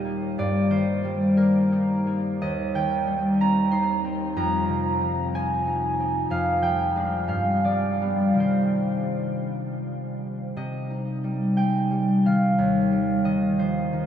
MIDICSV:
0, 0, Header, 1, 2, 480
1, 0, Start_track
1, 0, Key_signature, -3, "minor"
1, 0, Tempo, 660066
1, 295, Time_signature, 6, 3, 24, 8
1, 1256, Tempo, 701754
1, 1736, Tempo, 647249
1, 5096, Tempo, 687285
1, 5576, Tempo, 727273
1, 7496, Tempo, 672646
1, 9998, End_track
2, 0, Start_track
2, 0, Title_t, "Harp"
2, 0, Program_c, 0, 46
2, 0, Note_on_c, 0, 39, 46
2, 0, Note_on_c, 0, 46, 34
2, 0, Note_on_c, 0, 55, 37
2, 0, Note_on_c, 0, 63, 36
2, 0, Note_on_c, 0, 67, 57
2, 0, Note_on_c, 0, 70, 52
2, 0, Note_on_c, 0, 75, 60
2, 33, Note_on_c, 0, 58, 36
2, 277, Note_on_c, 0, 43, 49
2, 282, Note_on_c, 0, 74, 73
2, 307, Note_off_c, 0, 39, 0
2, 307, Note_off_c, 0, 46, 0
2, 508, Note_on_c, 0, 51, 35
2, 514, Note_on_c, 0, 72, 64
2, 690, Note_off_c, 0, 74, 0
2, 753, Note_off_c, 0, 55, 0
2, 762, Note_on_c, 0, 55, 41
2, 895, Note_off_c, 0, 70, 0
2, 987, Note_off_c, 0, 58, 0
2, 994, Note_on_c, 0, 58, 43
2, 997, Note_on_c, 0, 70, 61
2, 1243, Note_off_c, 0, 63, 0
2, 1252, Note_on_c, 0, 63, 39
2, 1342, Note_off_c, 0, 72, 0
2, 1481, Note_off_c, 0, 58, 0
2, 1489, Note_on_c, 0, 58, 41
2, 1718, Note_off_c, 0, 75, 0
2, 1726, Note_on_c, 0, 39, 51
2, 1728, Note_on_c, 0, 75, 79
2, 1745, Note_off_c, 0, 51, 0
2, 1748, Note_off_c, 0, 43, 0
2, 1750, Note_off_c, 0, 70, 0
2, 1751, Note_off_c, 0, 58, 0
2, 1970, Note_on_c, 0, 51, 37
2, 1975, Note_on_c, 0, 79, 69
2, 2201, Note_off_c, 0, 55, 0
2, 2210, Note_on_c, 0, 55, 41
2, 2357, Note_off_c, 0, 67, 0
2, 2459, Note_on_c, 0, 60, 41
2, 2463, Note_on_c, 0, 82, 77
2, 2688, Note_off_c, 0, 63, 0
2, 2689, Note_on_c, 0, 84, 64
2, 2697, Note_on_c, 0, 63, 43
2, 2871, Note_off_c, 0, 82, 0
2, 2925, Note_off_c, 0, 60, 0
2, 2934, Note_on_c, 0, 60, 38
2, 3172, Note_on_c, 0, 41, 54
2, 3175, Note_on_c, 0, 82, 78
2, 3198, Note_off_c, 0, 55, 0
2, 3199, Note_off_c, 0, 39, 0
2, 3199, Note_off_c, 0, 51, 0
2, 3200, Note_off_c, 0, 79, 0
2, 3412, Note_on_c, 0, 48, 37
2, 3654, Note_on_c, 0, 53, 42
2, 3890, Note_off_c, 0, 60, 0
2, 3897, Note_on_c, 0, 60, 40
2, 3902, Note_on_c, 0, 80, 71
2, 4129, Note_off_c, 0, 63, 0
2, 4138, Note_on_c, 0, 63, 40
2, 4373, Note_off_c, 0, 60, 0
2, 4382, Note_on_c, 0, 60, 35
2, 4391, Note_off_c, 0, 82, 0
2, 4603, Note_off_c, 0, 41, 0
2, 4610, Note_on_c, 0, 41, 51
2, 4614, Note_on_c, 0, 77, 72
2, 4620, Note_off_c, 0, 75, 0
2, 4625, Note_off_c, 0, 48, 0
2, 4625, Note_off_c, 0, 84, 0
2, 4633, Note_off_c, 0, 63, 0
2, 4636, Note_off_c, 0, 60, 0
2, 4835, Note_off_c, 0, 53, 0
2, 4842, Note_on_c, 0, 53, 39
2, 4848, Note_on_c, 0, 79, 68
2, 5094, Note_on_c, 0, 56, 37
2, 5099, Note_on_c, 0, 62, 39
2, 5313, Note_off_c, 0, 77, 0
2, 5318, Note_on_c, 0, 43, 44
2, 5324, Note_on_c, 0, 77, 58
2, 5350, Note_off_c, 0, 56, 0
2, 5351, Note_off_c, 0, 41, 0
2, 5351, Note_off_c, 0, 80, 0
2, 5565, Note_off_c, 0, 53, 0
2, 5571, Note_on_c, 0, 53, 35
2, 5575, Note_on_c, 0, 74, 57
2, 5667, Note_off_c, 0, 79, 0
2, 5817, Note_on_c, 0, 55, 31
2, 5820, Note_on_c, 0, 59, 34
2, 6031, Note_on_c, 0, 48, 41
2, 6039, Note_on_c, 0, 51, 30
2, 6044, Note_off_c, 0, 55, 0
2, 6052, Note_on_c, 0, 55, 34
2, 6058, Note_on_c, 0, 60, 31
2, 6073, Note_on_c, 0, 72, 53
2, 6074, Note_off_c, 0, 43, 0
2, 6074, Note_off_c, 0, 77, 0
2, 6078, Note_off_c, 0, 53, 0
2, 6078, Note_off_c, 0, 74, 0
2, 6079, Note_off_c, 0, 62, 0
2, 6082, Note_off_c, 0, 59, 0
2, 7494, Note_off_c, 0, 48, 0
2, 7502, Note_on_c, 0, 48, 48
2, 7504, Note_off_c, 0, 51, 0
2, 7506, Note_on_c, 0, 75, 64
2, 7743, Note_on_c, 0, 63, 33
2, 7975, Note_off_c, 0, 55, 0
2, 7983, Note_on_c, 0, 55, 35
2, 8218, Note_on_c, 0, 79, 63
2, 8222, Note_on_c, 0, 56, 33
2, 8451, Note_off_c, 0, 55, 0
2, 8460, Note_on_c, 0, 55, 38
2, 8631, Note_off_c, 0, 56, 0
2, 8707, Note_on_c, 0, 51, 33
2, 8713, Note_on_c, 0, 77, 64
2, 8724, Note_off_c, 0, 60, 0
2, 8740, Note_off_c, 0, 72, 0
2, 8943, Note_on_c, 0, 39, 49
2, 8962, Note_off_c, 0, 48, 0
2, 8962, Note_off_c, 0, 51, 0
2, 9173, Note_off_c, 0, 55, 0
2, 9181, Note_on_c, 0, 55, 37
2, 9408, Note_off_c, 0, 75, 0
2, 9414, Note_on_c, 0, 51, 39
2, 9418, Note_on_c, 0, 75, 64
2, 9658, Note_on_c, 0, 53, 32
2, 9664, Note_on_c, 0, 72, 60
2, 9895, Note_off_c, 0, 51, 0
2, 9903, Note_on_c, 0, 51, 37
2, 9923, Note_off_c, 0, 77, 0
2, 9998, Note_off_c, 0, 39, 0
2, 9998, Note_off_c, 0, 51, 0
2, 9998, Note_off_c, 0, 53, 0
2, 9998, Note_off_c, 0, 55, 0
2, 9998, Note_off_c, 0, 63, 0
2, 9998, Note_off_c, 0, 72, 0
2, 9998, Note_off_c, 0, 75, 0
2, 9998, Note_off_c, 0, 79, 0
2, 9998, End_track
0, 0, End_of_file